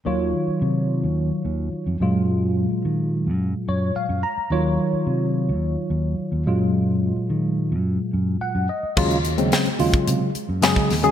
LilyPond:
<<
  \new Staff \with { instrumentName = "Tine electric piano" } { \time 4/4 \key ees \dorian \tempo 4 = 108 r1 | r2 r8 des''8 f''8 bes''8 | r1 | r2. ges''8 ees''8 |
r1 | }
  \new Staff \with { instrumentName = "Tine electric piano" } { \clef bass \time 4/4 \key ees \dorian <ees ges f' des''>2.~ <ees ges f' des''>8 <bes, ges aes f'>8~ | <bes, ges aes f'>2.~ <bes, ges aes f'>8 r8 | <ees ges f' des''>2.~ <ees ges f' des''>8 <bes, ges aes f'>8~ | <bes, ges aes f'>2.~ <bes, ges aes f'>8 r8 |
<des ges aes f'>16 r16 <aes f'>16 <des ges aes c'>8 r16 <des ges aes f'>4 r16 <aes bes>16 <des ges aes aes'>8 r16 <des ges aes aes'>16 | }
  \new Staff \with { instrumentName = "Fingered electric bass" } { \clef bass \time 4/4 \key ees \dorian ees,8 r8 c8. ees,8 r16 ees,8 r16 f,16 ges,8~ | ges,8. r16 ees8. ges,8 r16 ges,8 r16 ges,16 r8 | ees,8 r8 c8. ees,8 r16 ees,8 r16 ees,16 ges,8~ | ges,8. r16 ees8. ges,8 r16 ges,8 r16 ges,16 r8 |
ees,8. ees,16 r8 ees,16 r16 c16 r8 ges,8 r16 ees,8 | }
  \new DrumStaff \with { instrumentName = "Drums" } \drummode { \time 4/4 r4 r4 r4 r4 | r4 r4 r4 r4 | r4 r4 r4 r4 | r4 r4 r4 r4 |
<cymc bd>16 hh16 hh16 hh16 <hh sn>16 hh16 hho16 <hh bd>16 hh8 hh8 <hh sn>16 bd16 <hho sn>16 hh16 | }
>>